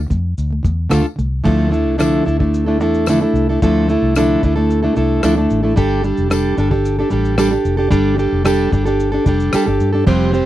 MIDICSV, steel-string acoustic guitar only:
0, 0, Header, 1, 2, 480
1, 0, Start_track
1, 0, Tempo, 538600
1, 1303, Time_signature, 4, 2, 24, 8
1, 9318, End_track
2, 0, Start_track
2, 0, Title_t, "Steel-string acoustic guitar"
2, 0, Program_c, 0, 25
2, 71, Note_on_c, 0, 50, 52
2, 91, Note_on_c, 0, 57, 64
2, 278, Note_off_c, 0, 50, 0
2, 288, Note_off_c, 0, 57, 0
2, 449, Note_on_c, 0, 50, 48
2, 468, Note_on_c, 0, 57, 52
2, 550, Note_off_c, 0, 50, 0
2, 560, Note_on_c, 0, 50, 52
2, 571, Note_off_c, 0, 57, 0
2, 582, Note_on_c, 0, 57, 60
2, 763, Note_off_c, 0, 50, 0
2, 774, Note_off_c, 0, 57, 0
2, 798, Note_on_c, 0, 50, 69
2, 804, Note_on_c, 0, 57, 71
2, 805, Note_on_c, 0, 62, 79
2, 812, Note_on_c, 0, 65, 73
2, 815, Note_on_c, 0, 69, 83
2, 906, Note_off_c, 0, 50, 0
2, 916, Note_on_c, 0, 50, 50
2, 925, Note_off_c, 0, 57, 0
2, 934, Note_off_c, 0, 62, 0
2, 935, Note_on_c, 0, 57, 54
2, 937, Note_off_c, 0, 65, 0
2, 939, Note_off_c, 0, 69, 0
2, 1022, Note_off_c, 0, 50, 0
2, 1033, Note_on_c, 0, 50, 54
2, 1047, Note_off_c, 0, 57, 0
2, 1057, Note_on_c, 0, 57, 61
2, 1240, Note_off_c, 0, 50, 0
2, 1252, Note_off_c, 0, 57, 0
2, 1280, Note_on_c, 0, 50, 78
2, 1283, Note_on_c, 0, 53, 82
2, 1285, Note_on_c, 0, 57, 78
2, 1289, Note_on_c, 0, 64, 80
2, 1292, Note_on_c, 0, 62, 78
2, 1294, Note_on_c, 0, 69, 89
2, 1507, Note_off_c, 0, 57, 0
2, 1512, Note_off_c, 0, 62, 0
2, 1517, Note_on_c, 0, 57, 55
2, 1520, Note_off_c, 0, 64, 0
2, 1523, Note_on_c, 0, 62, 57
2, 1524, Note_off_c, 0, 69, 0
2, 1530, Note_on_c, 0, 64, 64
2, 1531, Note_off_c, 0, 50, 0
2, 1533, Note_off_c, 0, 53, 0
2, 1535, Note_on_c, 0, 69, 61
2, 1757, Note_off_c, 0, 57, 0
2, 1760, Note_off_c, 0, 62, 0
2, 1762, Note_off_c, 0, 64, 0
2, 1762, Note_on_c, 0, 50, 66
2, 1764, Note_off_c, 0, 69, 0
2, 1767, Note_on_c, 0, 53, 75
2, 1768, Note_on_c, 0, 57, 71
2, 1770, Note_on_c, 0, 62, 88
2, 1773, Note_on_c, 0, 64, 89
2, 1775, Note_on_c, 0, 69, 84
2, 1995, Note_off_c, 0, 57, 0
2, 1999, Note_off_c, 0, 62, 0
2, 2006, Note_off_c, 0, 64, 0
2, 2010, Note_on_c, 0, 62, 58
2, 2013, Note_off_c, 0, 50, 0
2, 2014, Note_off_c, 0, 69, 0
2, 2015, Note_off_c, 0, 53, 0
2, 2016, Note_on_c, 0, 64, 63
2, 2025, Note_on_c, 0, 69, 67
2, 2121, Note_off_c, 0, 69, 0
2, 2123, Note_off_c, 0, 64, 0
2, 2131, Note_on_c, 0, 69, 44
2, 2133, Note_off_c, 0, 62, 0
2, 2134, Note_on_c, 0, 64, 45
2, 2144, Note_on_c, 0, 62, 46
2, 2150, Note_on_c, 0, 57, 38
2, 2363, Note_off_c, 0, 69, 0
2, 2372, Note_off_c, 0, 64, 0
2, 2373, Note_on_c, 0, 69, 51
2, 2377, Note_off_c, 0, 62, 0
2, 2379, Note_off_c, 0, 57, 0
2, 2383, Note_on_c, 0, 64, 49
2, 2387, Note_on_c, 0, 62, 49
2, 2390, Note_on_c, 0, 57, 46
2, 2485, Note_off_c, 0, 57, 0
2, 2491, Note_off_c, 0, 62, 0
2, 2496, Note_on_c, 0, 57, 57
2, 2497, Note_off_c, 0, 64, 0
2, 2499, Note_off_c, 0, 69, 0
2, 2502, Note_on_c, 0, 62, 59
2, 2508, Note_on_c, 0, 64, 64
2, 2513, Note_on_c, 0, 69, 67
2, 2740, Note_off_c, 0, 57, 0
2, 2743, Note_off_c, 0, 62, 0
2, 2746, Note_off_c, 0, 64, 0
2, 2748, Note_on_c, 0, 50, 72
2, 2749, Note_off_c, 0, 69, 0
2, 2753, Note_on_c, 0, 53, 69
2, 2755, Note_on_c, 0, 57, 77
2, 2758, Note_on_c, 0, 62, 82
2, 2762, Note_on_c, 0, 64, 78
2, 2765, Note_on_c, 0, 69, 75
2, 2851, Note_off_c, 0, 69, 0
2, 2858, Note_off_c, 0, 64, 0
2, 2861, Note_off_c, 0, 62, 0
2, 2861, Note_on_c, 0, 69, 52
2, 2866, Note_off_c, 0, 50, 0
2, 2868, Note_off_c, 0, 53, 0
2, 2869, Note_on_c, 0, 64, 54
2, 2870, Note_off_c, 0, 57, 0
2, 2872, Note_on_c, 0, 62, 47
2, 2882, Note_on_c, 0, 57, 45
2, 3103, Note_off_c, 0, 69, 0
2, 3107, Note_off_c, 0, 64, 0
2, 3108, Note_off_c, 0, 62, 0
2, 3113, Note_off_c, 0, 57, 0
2, 3113, Note_on_c, 0, 69, 54
2, 3118, Note_on_c, 0, 64, 50
2, 3123, Note_on_c, 0, 62, 41
2, 3132, Note_on_c, 0, 57, 44
2, 3219, Note_off_c, 0, 57, 0
2, 3223, Note_off_c, 0, 64, 0
2, 3226, Note_off_c, 0, 62, 0
2, 3226, Note_on_c, 0, 50, 79
2, 3227, Note_on_c, 0, 53, 86
2, 3229, Note_off_c, 0, 69, 0
2, 3230, Note_on_c, 0, 57, 81
2, 3234, Note_on_c, 0, 64, 81
2, 3236, Note_on_c, 0, 62, 80
2, 3240, Note_on_c, 0, 69, 98
2, 3451, Note_off_c, 0, 57, 0
2, 3461, Note_off_c, 0, 62, 0
2, 3462, Note_on_c, 0, 57, 59
2, 3465, Note_off_c, 0, 50, 0
2, 3466, Note_off_c, 0, 53, 0
2, 3469, Note_off_c, 0, 64, 0
2, 3471, Note_on_c, 0, 62, 57
2, 3472, Note_off_c, 0, 69, 0
2, 3479, Note_on_c, 0, 64, 68
2, 3484, Note_on_c, 0, 69, 71
2, 3703, Note_off_c, 0, 57, 0
2, 3705, Note_off_c, 0, 62, 0
2, 3708, Note_on_c, 0, 50, 81
2, 3708, Note_on_c, 0, 53, 79
2, 3709, Note_off_c, 0, 64, 0
2, 3710, Note_off_c, 0, 69, 0
2, 3713, Note_on_c, 0, 57, 76
2, 3716, Note_on_c, 0, 62, 90
2, 3719, Note_on_c, 0, 64, 84
2, 3721, Note_on_c, 0, 69, 84
2, 3939, Note_off_c, 0, 57, 0
2, 3944, Note_off_c, 0, 62, 0
2, 3946, Note_off_c, 0, 50, 0
2, 3946, Note_off_c, 0, 53, 0
2, 3950, Note_on_c, 0, 57, 56
2, 3952, Note_off_c, 0, 64, 0
2, 3953, Note_off_c, 0, 69, 0
2, 3955, Note_on_c, 0, 62, 65
2, 3963, Note_on_c, 0, 64, 62
2, 3970, Note_on_c, 0, 69, 66
2, 4050, Note_off_c, 0, 69, 0
2, 4059, Note_off_c, 0, 64, 0
2, 4061, Note_off_c, 0, 62, 0
2, 4061, Note_on_c, 0, 69, 52
2, 4067, Note_off_c, 0, 57, 0
2, 4070, Note_on_c, 0, 64, 46
2, 4072, Note_on_c, 0, 62, 40
2, 4078, Note_on_c, 0, 57, 44
2, 4290, Note_off_c, 0, 69, 0
2, 4299, Note_off_c, 0, 64, 0
2, 4301, Note_on_c, 0, 69, 61
2, 4305, Note_off_c, 0, 62, 0
2, 4309, Note_on_c, 0, 64, 57
2, 4311, Note_off_c, 0, 57, 0
2, 4316, Note_on_c, 0, 62, 49
2, 4322, Note_on_c, 0, 57, 48
2, 4404, Note_off_c, 0, 57, 0
2, 4414, Note_on_c, 0, 57, 60
2, 4416, Note_off_c, 0, 62, 0
2, 4417, Note_off_c, 0, 64, 0
2, 4422, Note_off_c, 0, 69, 0
2, 4427, Note_on_c, 0, 62, 59
2, 4428, Note_on_c, 0, 64, 61
2, 4436, Note_on_c, 0, 69, 69
2, 4652, Note_off_c, 0, 57, 0
2, 4661, Note_off_c, 0, 62, 0
2, 4661, Note_on_c, 0, 50, 78
2, 4663, Note_off_c, 0, 64, 0
2, 4663, Note_on_c, 0, 57, 82
2, 4665, Note_on_c, 0, 53, 79
2, 4666, Note_off_c, 0, 69, 0
2, 4671, Note_on_c, 0, 62, 85
2, 4673, Note_on_c, 0, 64, 86
2, 4677, Note_on_c, 0, 69, 90
2, 4768, Note_off_c, 0, 69, 0
2, 4774, Note_off_c, 0, 64, 0
2, 4779, Note_on_c, 0, 69, 54
2, 4782, Note_off_c, 0, 62, 0
2, 4783, Note_off_c, 0, 50, 0
2, 4784, Note_off_c, 0, 53, 0
2, 4784, Note_off_c, 0, 57, 0
2, 4785, Note_on_c, 0, 64, 50
2, 4793, Note_on_c, 0, 62, 51
2, 4795, Note_on_c, 0, 57, 46
2, 5004, Note_off_c, 0, 69, 0
2, 5011, Note_off_c, 0, 64, 0
2, 5015, Note_on_c, 0, 69, 51
2, 5016, Note_off_c, 0, 62, 0
2, 5020, Note_off_c, 0, 57, 0
2, 5021, Note_on_c, 0, 64, 51
2, 5027, Note_on_c, 0, 62, 47
2, 5031, Note_on_c, 0, 57, 46
2, 5129, Note_off_c, 0, 57, 0
2, 5129, Note_off_c, 0, 62, 0
2, 5133, Note_on_c, 0, 55, 81
2, 5139, Note_off_c, 0, 69, 0
2, 5140, Note_on_c, 0, 62, 81
2, 5143, Note_off_c, 0, 64, 0
2, 5148, Note_on_c, 0, 67, 95
2, 5149, Note_on_c, 0, 69, 92
2, 5368, Note_off_c, 0, 55, 0
2, 5375, Note_off_c, 0, 62, 0
2, 5378, Note_on_c, 0, 55, 60
2, 5384, Note_off_c, 0, 67, 0
2, 5386, Note_off_c, 0, 69, 0
2, 5386, Note_on_c, 0, 62, 68
2, 5394, Note_on_c, 0, 67, 73
2, 5399, Note_on_c, 0, 69, 62
2, 5605, Note_off_c, 0, 55, 0
2, 5612, Note_off_c, 0, 62, 0
2, 5616, Note_off_c, 0, 67, 0
2, 5616, Note_on_c, 0, 55, 80
2, 5623, Note_on_c, 0, 62, 83
2, 5625, Note_off_c, 0, 69, 0
2, 5627, Note_on_c, 0, 67, 84
2, 5636, Note_on_c, 0, 69, 92
2, 5847, Note_off_c, 0, 55, 0
2, 5855, Note_off_c, 0, 62, 0
2, 5857, Note_on_c, 0, 55, 58
2, 5865, Note_off_c, 0, 67, 0
2, 5866, Note_on_c, 0, 62, 66
2, 5869, Note_off_c, 0, 69, 0
2, 5875, Note_on_c, 0, 67, 56
2, 5880, Note_on_c, 0, 69, 65
2, 5968, Note_off_c, 0, 69, 0
2, 5977, Note_off_c, 0, 67, 0
2, 5978, Note_on_c, 0, 69, 54
2, 5980, Note_off_c, 0, 55, 0
2, 5984, Note_off_c, 0, 62, 0
2, 5988, Note_on_c, 0, 67, 45
2, 5998, Note_on_c, 0, 62, 45
2, 6216, Note_off_c, 0, 69, 0
2, 6223, Note_off_c, 0, 67, 0
2, 6226, Note_on_c, 0, 69, 61
2, 6230, Note_off_c, 0, 62, 0
2, 6234, Note_on_c, 0, 67, 49
2, 6241, Note_on_c, 0, 62, 46
2, 6328, Note_off_c, 0, 62, 0
2, 6331, Note_on_c, 0, 55, 58
2, 6337, Note_off_c, 0, 67, 0
2, 6339, Note_on_c, 0, 62, 58
2, 6341, Note_off_c, 0, 69, 0
2, 6348, Note_on_c, 0, 67, 68
2, 6352, Note_on_c, 0, 69, 72
2, 6565, Note_off_c, 0, 55, 0
2, 6567, Note_off_c, 0, 62, 0
2, 6576, Note_off_c, 0, 69, 0
2, 6576, Note_on_c, 0, 55, 88
2, 6578, Note_off_c, 0, 67, 0
2, 6578, Note_on_c, 0, 62, 86
2, 6586, Note_on_c, 0, 69, 89
2, 6589, Note_on_c, 0, 67, 95
2, 6680, Note_off_c, 0, 69, 0
2, 6691, Note_off_c, 0, 67, 0
2, 6691, Note_on_c, 0, 69, 53
2, 6698, Note_off_c, 0, 62, 0
2, 6699, Note_off_c, 0, 55, 0
2, 6701, Note_on_c, 0, 67, 47
2, 6709, Note_on_c, 0, 62, 47
2, 6916, Note_off_c, 0, 69, 0
2, 6926, Note_on_c, 0, 69, 53
2, 6927, Note_off_c, 0, 67, 0
2, 6934, Note_off_c, 0, 62, 0
2, 6938, Note_on_c, 0, 67, 52
2, 6944, Note_on_c, 0, 62, 48
2, 7035, Note_off_c, 0, 62, 0
2, 7040, Note_off_c, 0, 67, 0
2, 7045, Note_on_c, 0, 55, 88
2, 7046, Note_on_c, 0, 62, 85
2, 7047, Note_off_c, 0, 69, 0
2, 7051, Note_on_c, 0, 67, 80
2, 7058, Note_on_c, 0, 69, 92
2, 7269, Note_off_c, 0, 55, 0
2, 7279, Note_off_c, 0, 62, 0
2, 7279, Note_on_c, 0, 55, 58
2, 7289, Note_off_c, 0, 67, 0
2, 7289, Note_on_c, 0, 62, 65
2, 7291, Note_off_c, 0, 69, 0
2, 7300, Note_on_c, 0, 67, 67
2, 7302, Note_on_c, 0, 69, 69
2, 7517, Note_off_c, 0, 55, 0
2, 7521, Note_off_c, 0, 62, 0
2, 7524, Note_off_c, 0, 67, 0
2, 7527, Note_on_c, 0, 55, 83
2, 7532, Note_off_c, 0, 69, 0
2, 7532, Note_on_c, 0, 62, 83
2, 7534, Note_on_c, 0, 67, 96
2, 7542, Note_on_c, 0, 69, 90
2, 7757, Note_off_c, 0, 55, 0
2, 7768, Note_off_c, 0, 62, 0
2, 7768, Note_on_c, 0, 55, 58
2, 7772, Note_off_c, 0, 67, 0
2, 7778, Note_off_c, 0, 69, 0
2, 7779, Note_on_c, 0, 62, 69
2, 7783, Note_on_c, 0, 67, 68
2, 7789, Note_on_c, 0, 69, 66
2, 7881, Note_off_c, 0, 69, 0
2, 7891, Note_on_c, 0, 69, 55
2, 7892, Note_off_c, 0, 67, 0
2, 7894, Note_off_c, 0, 55, 0
2, 7899, Note_off_c, 0, 62, 0
2, 7903, Note_on_c, 0, 67, 52
2, 7911, Note_on_c, 0, 62, 45
2, 8115, Note_off_c, 0, 69, 0
2, 8126, Note_on_c, 0, 69, 59
2, 8128, Note_off_c, 0, 67, 0
2, 8138, Note_off_c, 0, 62, 0
2, 8139, Note_on_c, 0, 67, 53
2, 8149, Note_on_c, 0, 62, 49
2, 8250, Note_off_c, 0, 62, 0
2, 8252, Note_off_c, 0, 69, 0
2, 8255, Note_on_c, 0, 55, 62
2, 8259, Note_off_c, 0, 67, 0
2, 8260, Note_on_c, 0, 62, 60
2, 8272, Note_on_c, 0, 67, 69
2, 8277, Note_on_c, 0, 69, 76
2, 8485, Note_off_c, 0, 55, 0
2, 8494, Note_off_c, 0, 62, 0
2, 8496, Note_on_c, 0, 55, 77
2, 8498, Note_off_c, 0, 67, 0
2, 8505, Note_on_c, 0, 62, 85
2, 8507, Note_off_c, 0, 69, 0
2, 8509, Note_on_c, 0, 67, 84
2, 8517, Note_on_c, 0, 69, 90
2, 8600, Note_off_c, 0, 69, 0
2, 8611, Note_on_c, 0, 69, 60
2, 8612, Note_off_c, 0, 67, 0
2, 8617, Note_off_c, 0, 55, 0
2, 8621, Note_off_c, 0, 62, 0
2, 8623, Note_on_c, 0, 67, 56
2, 8633, Note_on_c, 0, 62, 47
2, 8835, Note_off_c, 0, 69, 0
2, 8845, Note_off_c, 0, 67, 0
2, 8846, Note_on_c, 0, 69, 57
2, 8856, Note_off_c, 0, 62, 0
2, 8856, Note_on_c, 0, 67, 52
2, 8867, Note_on_c, 0, 62, 46
2, 8966, Note_off_c, 0, 67, 0
2, 8970, Note_on_c, 0, 53, 88
2, 8971, Note_off_c, 0, 69, 0
2, 8971, Note_on_c, 0, 55, 78
2, 8972, Note_off_c, 0, 62, 0
2, 8975, Note_on_c, 0, 60, 82
2, 8977, Note_on_c, 0, 67, 94
2, 8982, Note_on_c, 0, 72, 92
2, 9188, Note_off_c, 0, 55, 0
2, 9195, Note_off_c, 0, 60, 0
2, 9199, Note_on_c, 0, 55, 66
2, 9202, Note_off_c, 0, 67, 0
2, 9206, Note_on_c, 0, 60, 61
2, 9212, Note_off_c, 0, 72, 0
2, 9213, Note_off_c, 0, 53, 0
2, 9213, Note_on_c, 0, 67, 70
2, 9223, Note_on_c, 0, 72, 74
2, 9318, Note_off_c, 0, 55, 0
2, 9318, Note_off_c, 0, 60, 0
2, 9318, Note_off_c, 0, 67, 0
2, 9318, Note_off_c, 0, 72, 0
2, 9318, End_track
0, 0, End_of_file